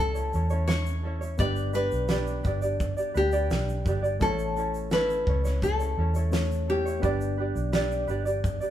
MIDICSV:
0, 0, Header, 1, 6, 480
1, 0, Start_track
1, 0, Tempo, 704225
1, 952, Time_signature, 4, 2, 24, 8
1, 5932, End_track
2, 0, Start_track
2, 0, Title_t, "Nylon-string guitar"
2, 0, Program_c, 0, 24
2, 0, Note_on_c, 0, 69, 85
2, 458, Note_off_c, 0, 69, 0
2, 461, Note_on_c, 0, 73, 99
2, 918, Note_off_c, 0, 73, 0
2, 952, Note_on_c, 0, 74, 96
2, 1175, Note_off_c, 0, 74, 0
2, 1193, Note_on_c, 0, 71, 101
2, 1644, Note_off_c, 0, 71, 0
2, 2162, Note_on_c, 0, 67, 82
2, 2875, Note_off_c, 0, 67, 0
2, 2878, Note_on_c, 0, 69, 109
2, 3356, Note_off_c, 0, 69, 0
2, 3359, Note_on_c, 0, 71, 98
2, 3837, Note_off_c, 0, 71, 0
2, 3840, Note_on_c, 0, 69, 79
2, 4562, Note_off_c, 0, 69, 0
2, 4565, Note_on_c, 0, 67, 84
2, 5252, Note_off_c, 0, 67, 0
2, 5932, End_track
3, 0, Start_track
3, 0, Title_t, "Ukulele"
3, 0, Program_c, 1, 24
3, 0, Note_on_c, 1, 61, 38
3, 0, Note_on_c, 1, 64, 52
3, 0, Note_on_c, 1, 73, 59
3, 93, Note_off_c, 1, 73, 0
3, 101, Note_on_c, 1, 73, 55
3, 105, Note_off_c, 1, 64, 0
3, 113, Note_on_c, 1, 64, 46
3, 115, Note_off_c, 1, 61, 0
3, 123, Note_on_c, 1, 61, 43
3, 220, Note_off_c, 1, 61, 0
3, 221, Note_on_c, 1, 69, 47
3, 227, Note_off_c, 1, 64, 0
3, 227, Note_off_c, 1, 73, 0
3, 229, Note_on_c, 1, 61, 62
3, 235, Note_on_c, 1, 64, 58
3, 241, Note_on_c, 1, 73, 61
3, 334, Note_off_c, 1, 73, 0
3, 340, Note_off_c, 1, 64, 0
3, 342, Note_on_c, 1, 73, 73
3, 347, Note_off_c, 1, 69, 0
3, 348, Note_off_c, 1, 61, 0
3, 348, Note_on_c, 1, 64, 60
3, 356, Note_on_c, 1, 61, 68
3, 358, Note_on_c, 1, 69, 50
3, 695, Note_off_c, 1, 69, 0
3, 703, Note_on_c, 1, 69, 55
3, 705, Note_off_c, 1, 61, 0
3, 707, Note_off_c, 1, 73, 0
3, 710, Note_off_c, 1, 64, 0
3, 713, Note_on_c, 1, 61, 60
3, 717, Note_on_c, 1, 64, 65
3, 728, Note_on_c, 1, 73, 61
3, 815, Note_off_c, 1, 73, 0
3, 823, Note_on_c, 1, 73, 56
3, 826, Note_off_c, 1, 64, 0
3, 828, Note_off_c, 1, 69, 0
3, 832, Note_off_c, 1, 61, 0
3, 834, Note_on_c, 1, 64, 50
3, 845, Note_on_c, 1, 61, 49
3, 947, Note_off_c, 1, 73, 0
3, 947, Note_on_c, 1, 71, 74
3, 950, Note_off_c, 1, 61, 0
3, 952, Note_on_c, 1, 62, 71
3, 953, Note_off_c, 1, 64, 0
3, 958, Note_on_c, 1, 67, 82
3, 961, Note_on_c, 1, 74, 84
3, 1172, Note_off_c, 1, 71, 0
3, 1180, Note_off_c, 1, 62, 0
3, 1180, Note_on_c, 1, 71, 68
3, 1187, Note_off_c, 1, 67, 0
3, 1188, Note_on_c, 1, 62, 68
3, 1194, Note_off_c, 1, 74, 0
3, 1195, Note_on_c, 1, 67, 72
3, 1202, Note_on_c, 1, 74, 74
3, 1413, Note_off_c, 1, 71, 0
3, 1418, Note_off_c, 1, 62, 0
3, 1421, Note_on_c, 1, 71, 72
3, 1425, Note_off_c, 1, 67, 0
3, 1426, Note_on_c, 1, 62, 78
3, 1428, Note_off_c, 1, 74, 0
3, 1433, Note_on_c, 1, 67, 85
3, 1437, Note_on_c, 1, 74, 84
3, 1651, Note_off_c, 1, 71, 0
3, 1659, Note_off_c, 1, 62, 0
3, 1659, Note_on_c, 1, 71, 58
3, 1665, Note_off_c, 1, 67, 0
3, 1667, Note_on_c, 1, 62, 56
3, 1672, Note_off_c, 1, 74, 0
3, 1674, Note_on_c, 1, 67, 62
3, 1680, Note_on_c, 1, 74, 61
3, 1775, Note_off_c, 1, 74, 0
3, 1783, Note_on_c, 1, 74, 60
3, 1785, Note_off_c, 1, 71, 0
3, 1787, Note_off_c, 1, 67, 0
3, 1789, Note_off_c, 1, 62, 0
3, 1796, Note_on_c, 1, 67, 50
3, 1805, Note_on_c, 1, 62, 47
3, 2014, Note_off_c, 1, 74, 0
3, 2022, Note_on_c, 1, 74, 55
3, 2025, Note_off_c, 1, 67, 0
3, 2033, Note_on_c, 1, 67, 51
3, 2034, Note_off_c, 1, 62, 0
3, 2042, Note_on_c, 1, 62, 40
3, 2142, Note_off_c, 1, 62, 0
3, 2142, Note_on_c, 1, 71, 59
3, 2146, Note_off_c, 1, 74, 0
3, 2147, Note_off_c, 1, 67, 0
3, 2151, Note_on_c, 1, 62, 56
3, 2155, Note_on_c, 1, 67, 66
3, 2162, Note_on_c, 1, 74, 63
3, 2258, Note_off_c, 1, 74, 0
3, 2264, Note_off_c, 1, 67, 0
3, 2266, Note_off_c, 1, 71, 0
3, 2267, Note_on_c, 1, 74, 75
3, 2268, Note_off_c, 1, 62, 0
3, 2272, Note_on_c, 1, 67, 65
3, 2276, Note_on_c, 1, 62, 62
3, 2281, Note_on_c, 1, 71, 49
3, 2616, Note_off_c, 1, 71, 0
3, 2624, Note_off_c, 1, 62, 0
3, 2624, Note_on_c, 1, 71, 66
3, 2629, Note_off_c, 1, 74, 0
3, 2631, Note_off_c, 1, 67, 0
3, 2632, Note_on_c, 1, 62, 60
3, 2641, Note_on_c, 1, 67, 66
3, 2646, Note_on_c, 1, 74, 66
3, 2735, Note_off_c, 1, 74, 0
3, 2743, Note_on_c, 1, 74, 59
3, 2746, Note_off_c, 1, 67, 0
3, 2747, Note_off_c, 1, 71, 0
3, 2751, Note_off_c, 1, 62, 0
3, 2754, Note_on_c, 1, 67, 57
3, 2766, Note_on_c, 1, 62, 47
3, 2865, Note_on_c, 1, 69, 82
3, 2867, Note_off_c, 1, 74, 0
3, 2869, Note_off_c, 1, 62, 0
3, 2872, Note_off_c, 1, 67, 0
3, 2872, Note_on_c, 1, 61, 76
3, 2877, Note_on_c, 1, 64, 74
3, 2882, Note_on_c, 1, 73, 82
3, 3102, Note_off_c, 1, 69, 0
3, 3108, Note_off_c, 1, 61, 0
3, 3111, Note_on_c, 1, 69, 69
3, 3114, Note_off_c, 1, 64, 0
3, 3116, Note_off_c, 1, 73, 0
3, 3116, Note_on_c, 1, 61, 57
3, 3124, Note_on_c, 1, 64, 63
3, 3131, Note_on_c, 1, 73, 62
3, 3344, Note_off_c, 1, 69, 0
3, 3350, Note_off_c, 1, 61, 0
3, 3352, Note_on_c, 1, 69, 81
3, 3356, Note_off_c, 1, 64, 0
3, 3358, Note_on_c, 1, 61, 87
3, 3361, Note_off_c, 1, 73, 0
3, 3364, Note_on_c, 1, 64, 95
3, 3369, Note_on_c, 1, 73, 85
3, 3580, Note_off_c, 1, 69, 0
3, 3588, Note_on_c, 1, 69, 55
3, 3589, Note_off_c, 1, 61, 0
3, 3597, Note_off_c, 1, 64, 0
3, 3597, Note_on_c, 1, 61, 66
3, 3600, Note_off_c, 1, 73, 0
3, 3604, Note_on_c, 1, 64, 63
3, 3609, Note_on_c, 1, 73, 68
3, 3704, Note_off_c, 1, 73, 0
3, 3709, Note_off_c, 1, 69, 0
3, 3713, Note_on_c, 1, 73, 58
3, 3714, Note_off_c, 1, 61, 0
3, 3715, Note_off_c, 1, 64, 0
3, 3723, Note_on_c, 1, 64, 48
3, 3736, Note_on_c, 1, 61, 53
3, 3941, Note_off_c, 1, 73, 0
3, 3949, Note_on_c, 1, 73, 47
3, 3952, Note_off_c, 1, 64, 0
3, 3960, Note_on_c, 1, 64, 50
3, 3963, Note_off_c, 1, 61, 0
3, 3972, Note_on_c, 1, 61, 43
3, 4070, Note_off_c, 1, 73, 0
3, 4071, Note_off_c, 1, 61, 0
3, 4072, Note_on_c, 1, 69, 55
3, 4076, Note_off_c, 1, 64, 0
3, 4079, Note_on_c, 1, 61, 68
3, 4088, Note_on_c, 1, 64, 61
3, 4092, Note_on_c, 1, 73, 64
3, 4189, Note_off_c, 1, 73, 0
3, 4191, Note_off_c, 1, 69, 0
3, 4193, Note_off_c, 1, 64, 0
3, 4195, Note_off_c, 1, 61, 0
3, 4197, Note_on_c, 1, 73, 60
3, 4202, Note_on_c, 1, 64, 65
3, 4207, Note_on_c, 1, 61, 58
3, 4211, Note_on_c, 1, 69, 55
3, 4544, Note_off_c, 1, 69, 0
3, 4552, Note_on_c, 1, 69, 51
3, 4554, Note_off_c, 1, 73, 0
3, 4555, Note_off_c, 1, 61, 0
3, 4557, Note_off_c, 1, 64, 0
3, 4563, Note_on_c, 1, 61, 62
3, 4568, Note_on_c, 1, 64, 71
3, 4576, Note_on_c, 1, 73, 58
3, 4664, Note_off_c, 1, 73, 0
3, 4672, Note_off_c, 1, 69, 0
3, 4672, Note_on_c, 1, 73, 64
3, 4676, Note_off_c, 1, 64, 0
3, 4677, Note_off_c, 1, 61, 0
3, 4684, Note_on_c, 1, 64, 61
3, 4692, Note_on_c, 1, 61, 50
3, 4784, Note_on_c, 1, 71, 75
3, 4788, Note_off_c, 1, 61, 0
3, 4791, Note_on_c, 1, 62, 76
3, 4792, Note_off_c, 1, 64, 0
3, 4792, Note_off_c, 1, 73, 0
3, 4794, Note_on_c, 1, 67, 80
3, 4800, Note_on_c, 1, 74, 90
3, 5018, Note_off_c, 1, 71, 0
3, 5026, Note_off_c, 1, 62, 0
3, 5026, Note_on_c, 1, 71, 56
3, 5034, Note_off_c, 1, 67, 0
3, 5034, Note_on_c, 1, 62, 62
3, 5037, Note_off_c, 1, 74, 0
3, 5044, Note_on_c, 1, 67, 62
3, 5049, Note_on_c, 1, 74, 57
3, 5257, Note_off_c, 1, 71, 0
3, 5265, Note_off_c, 1, 62, 0
3, 5265, Note_on_c, 1, 71, 89
3, 5269, Note_off_c, 1, 67, 0
3, 5272, Note_off_c, 1, 74, 0
3, 5274, Note_on_c, 1, 62, 99
3, 5277, Note_on_c, 1, 67, 99
3, 5280, Note_on_c, 1, 74, 97
3, 5494, Note_off_c, 1, 71, 0
3, 5503, Note_on_c, 1, 71, 68
3, 5504, Note_off_c, 1, 62, 0
3, 5510, Note_off_c, 1, 67, 0
3, 5512, Note_on_c, 1, 62, 74
3, 5515, Note_off_c, 1, 74, 0
3, 5518, Note_on_c, 1, 67, 62
3, 5524, Note_on_c, 1, 74, 79
3, 5616, Note_off_c, 1, 74, 0
3, 5624, Note_on_c, 1, 74, 60
3, 5628, Note_off_c, 1, 67, 0
3, 5628, Note_off_c, 1, 71, 0
3, 5633, Note_off_c, 1, 62, 0
3, 5636, Note_on_c, 1, 67, 55
3, 5644, Note_on_c, 1, 62, 52
3, 5856, Note_off_c, 1, 74, 0
3, 5864, Note_on_c, 1, 74, 52
3, 5868, Note_off_c, 1, 67, 0
3, 5876, Note_off_c, 1, 62, 0
3, 5876, Note_on_c, 1, 67, 54
3, 5884, Note_on_c, 1, 62, 50
3, 5932, Note_off_c, 1, 62, 0
3, 5932, Note_off_c, 1, 67, 0
3, 5932, Note_off_c, 1, 74, 0
3, 5932, End_track
4, 0, Start_track
4, 0, Title_t, "Reed electric piano"
4, 0, Program_c, 2, 4
4, 0, Control_c, 2, 64, 127
4, 0, Note_on_c, 2, 57, 62
4, 0, Note_on_c, 2, 61, 54
4, 0, Note_on_c, 2, 64, 53
4, 0, Note_on_c, 2, 73, 63
4, 916, Note_off_c, 2, 57, 0
4, 920, Note_off_c, 2, 61, 0
4, 926, Note_off_c, 2, 64, 0
4, 930, Note_off_c, 2, 73, 0
4, 938, Note_on_c, 2, 59, 61
4, 947, Note_on_c, 2, 62, 55
4, 958, Note_on_c, 2, 67, 54
4, 960, Control_c, 2, 64, 0
4, 966, Note_on_c, 2, 74, 70
4, 1069, Control_c, 2, 64, 127
4, 2837, Note_off_c, 2, 59, 0
4, 2841, Note_off_c, 2, 62, 0
4, 2847, Note_off_c, 2, 67, 0
4, 2850, Note_off_c, 2, 74, 0
4, 2859, Note_on_c, 2, 57, 59
4, 2865, Note_on_c, 2, 61, 57
4, 2876, Note_on_c, 2, 64, 55
4, 2878, Control_c, 2, 64, 0
4, 2885, Note_on_c, 2, 73, 67
4, 2988, Control_c, 2, 64, 127
4, 4278, Note_off_c, 2, 57, 0
4, 4281, Note_off_c, 2, 61, 0
4, 4287, Note_off_c, 2, 64, 0
4, 4291, Note_off_c, 2, 73, 0
4, 4297, Note_on_c, 2, 57, 54
4, 4304, Note_on_c, 2, 61, 51
4, 4307, Note_on_c, 2, 64, 49
4, 4311, Note_on_c, 2, 73, 62
4, 4769, Note_on_c, 2, 59, 62
4, 4780, Note_on_c, 2, 62, 56
4, 4785, Note_off_c, 2, 57, 0
4, 4788, Note_off_c, 2, 61, 0
4, 4788, Note_on_c, 2, 67, 56
4, 4790, Note_off_c, 2, 64, 0
4, 4792, Note_off_c, 2, 73, 0
4, 4799, Control_c, 2, 64, 0
4, 4800, Note_on_c, 2, 74, 70
4, 4940, Control_c, 2, 64, 127
4, 5932, Note_off_c, 2, 59, 0
4, 5932, Note_off_c, 2, 62, 0
4, 5932, Note_off_c, 2, 67, 0
4, 5932, Note_off_c, 2, 74, 0
4, 5932, End_track
5, 0, Start_track
5, 0, Title_t, "Fingered electric bass"
5, 0, Program_c, 3, 33
5, 0, Note_on_c, 3, 37, 67
5, 204, Note_off_c, 3, 37, 0
5, 232, Note_on_c, 3, 40, 81
5, 924, Note_off_c, 3, 40, 0
5, 947, Note_on_c, 3, 31, 96
5, 1282, Note_off_c, 3, 31, 0
5, 1310, Note_on_c, 3, 35, 83
5, 1643, Note_off_c, 3, 35, 0
5, 1669, Note_on_c, 3, 31, 76
5, 2002, Note_off_c, 3, 31, 0
5, 2150, Note_on_c, 3, 38, 91
5, 2371, Note_off_c, 3, 38, 0
5, 2390, Note_on_c, 3, 35, 98
5, 2630, Note_on_c, 3, 31, 86
5, 2640, Note_off_c, 3, 35, 0
5, 2851, Note_off_c, 3, 31, 0
5, 2871, Note_on_c, 3, 33, 104
5, 3564, Note_off_c, 3, 33, 0
5, 3593, Note_on_c, 3, 37, 74
5, 4045, Note_off_c, 3, 37, 0
5, 4073, Note_on_c, 3, 40, 86
5, 4765, Note_off_c, 3, 40, 0
5, 4794, Note_on_c, 3, 31, 91
5, 5127, Note_off_c, 3, 31, 0
5, 5150, Note_on_c, 3, 35, 90
5, 5485, Note_off_c, 3, 35, 0
5, 5509, Note_on_c, 3, 31, 78
5, 5845, Note_off_c, 3, 31, 0
5, 5932, End_track
6, 0, Start_track
6, 0, Title_t, "Drums"
6, 105, Note_on_c, 9, 82, 55
6, 173, Note_off_c, 9, 82, 0
6, 226, Note_on_c, 9, 82, 44
6, 294, Note_off_c, 9, 82, 0
6, 340, Note_on_c, 9, 82, 54
6, 408, Note_off_c, 9, 82, 0
6, 463, Note_on_c, 9, 82, 68
6, 468, Note_on_c, 9, 38, 109
6, 531, Note_off_c, 9, 82, 0
6, 536, Note_off_c, 9, 38, 0
6, 587, Note_on_c, 9, 82, 58
6, 655, Note_off_c, 9, 82, 0
6, 831, Note_on_c, 9, 82, 49
6, 899, Note_off_c, 9, 82, 0
6, 943, Note_on_c, 9, 82, 65
6, 947, Note_on_c, 9, 36, 97
6, 1011, Note_off_c, 9, 82, 0
6, 1015, Note_off_c, 9, 36, 0
6, 1064, Note_on_c, 9, 82, 60
6, 1132, Note_off_c, 9, 82, 0
6, 1184, Note_on_c, 9, 82, 62
6, 1253, Note_off_c, 9, 82, 0
6, 1305, Note_on_c, 9, 82, 47
6, 1373, Note_off_c, 9, 82, 0
6, 1421, Note_on_c, 9, 82, 63
6, 1423, Note_on_c, 9, 38, 103
6, 1490, Note_off_c, 9, 82, 0
6, 1491, Note_off_c, 9, 38, 0
6, 1548, Note_on_c, 9, 82, 53
6, 1616, Note_off_c, 9, 82, 0
6, 1664, Note_on_c, 9, 82, 46
6, 1668, Note_on_c, 9, 36, 87
6, 1733, Note_off_c, 9, 82, 0
6, 1737, Note_off_c, 9, 36, 0
6, 1787, Note_on_c, 9, 82, 61
6, 1855, Note_off_c, 9, 82, 0
6, 1910, Note_on_c, 9, 36, 102
6, 1911, Note_on_c, 9, 82, 76
6, 1978, Note_off_c, 9, 36, 0
6, 1979, Note_off_c, 9, 82, 0
6, 2029, Note_on_c, 9, 82, 61
6, 2097, Note_off_c, 9, 82, 0
6, 2149, Note_on_c, 9, 82, 47
6, 2217, Note_off_c, 9, 82, 0
6, 2263, Note_on_c, 9, 82, 57
6, 2331, Note_off_c, 9, 82, 0
6, 2389, Note_on_c, 9, 82, 70
6, 2394, Note_on_c, 9, 38, 93
6, 2457, Note_off_c, 9, 82, 0
6, 2462, Note_off_c, 9, 38, 0
6, 2514, Note_on_c, 9, 82, 51
6, 2582, Note_off_c, 9, 82, 0
6, 2629, Note_on_c, 9, 36, 80
6, 2631, Note_on_c, 9, 82, 58
6, 2697, Note_off_c, 9, 36, 0
6, 2699, Note_off_c, 9, 82, 0
6, 2755, Note_on_c, 9, 82, 49
6, 2824, Note_off_c, 9, 82, 0
6, 2870, Note_on_c, 9, 36, 100
6, 2870, Note_on_c, 9, 82, 65
6, 2938, Note_off_c, 9, 36, 0
6, 2938, Note_off_c, 9, 82, 0
6, 2991, Note_on_c, 9, 82, 62
6, 3059, Note_off_c, 9, 82, 0
6, 3113, Note_on_c, 9, 82, 56
6, 3181, Note_off_c, 9, 82, 0
6, 3233, Note_on_c, 9, 82, 47
6, 3301, Note_off_c, 9, 82, 0
6, 3347, Note_on_c, 9, 82, 62
6, 3349, Note_on_c, 9, 38, 102
6, 3415, Note_off_c, 9, 82, 0
6, 3417, Note_off_c, 9, 38, 0
6, 3475, Note_on_c, 9, 82, 50
6, 3543, Note_off_c, 9, 82, 0
6, 3591, Note_on_c, 9, 36, 91
6, 3660, Note_off_c, 9, 36, 0
6, 3713, Note_on_c, 9, 38, 34
6, 3713, Note_on_c, 9, 82, 69
6, 3782, Note_off_c, 9, 38, 0
6, 3782, Note_off_c, 9, 82, 0
6, 3832, Note_on_c, 9, 36, 92
6, 3836, Note_on_c, 9, 82, 72
6, 3901, Note_off_c, 9, 36, 0
6, 3904, Note_off_c, 9, 82, 0
6, 3954, Note_on_c, 9, 82, 67
6, 4022, Note_off_c, 9, 82, 0
6, 4190, Note_on_c, 9, 82, 68
6, 4259, Note_off_c, 9, 82, 0
6, 4310, Note_on_c, 9, 82, 68
6, 4315, Note_on_c, 9, 38, 112
6, 4379, Note_off_c, 9, 82, 0
6, 4384, Note_off_c, 9, 38, 0
6, 4440, Note_on_c, 9, 82, 52
6, 4508, Note_off_c, 9, 82, 0
6, 4681, Note_on_c, 9, 82, 53
6, 4749, Note_off_c, 9, 82, 0
6, 4792, Note_on_c, 9, 36, 90
6, 4793, Note_on_c, 9, 82, 59
6, 4861, Note_off_c, 9, 36, 0
6, 4861, Note_off_c, 9, 82, 0
6, 4914, Note_on_c, 9, 82, 60
6, 4982, Note_off_c, 9, 82, 0
6, 5153, Note_on_c, 9, 82, 56
6, 5221, Note_off_c, 9, 82, 0
6, 5269, Note_on_c, 9, 82, 61
6, 5271, Note_on_c, 9, 38, 109
6, 5337, Note_off_c, 9, 82, 0
6, 5339, Note_off_c, 9, 38, 0
6, 5394, Note_on_c, 9, 82, 55
6, 5463, Note_off_c, 9, 82, 0
6, 5508, Note_on_c, 9, 82, 43
6, 5576, Note_off_c, 9, 82, 0
6, 5632, Note_on_c, 9, 82, 61
6, 5700, Note_off_c, 9, 82, 0
6, 5753, Note_on_c, 9, 36, 98
6, 5756, Note_on_c, 9, 82, 75
6, 5821, Note_off_c, 9, 36, 0
6, 5824, Note_off_c, 9, 82, 0
6, 5871, Note_on_c, 9, 82, 57
6, 5932, Note_off_c, 9, 82, 0
6, 5932, End_track
0, 0, End_of_file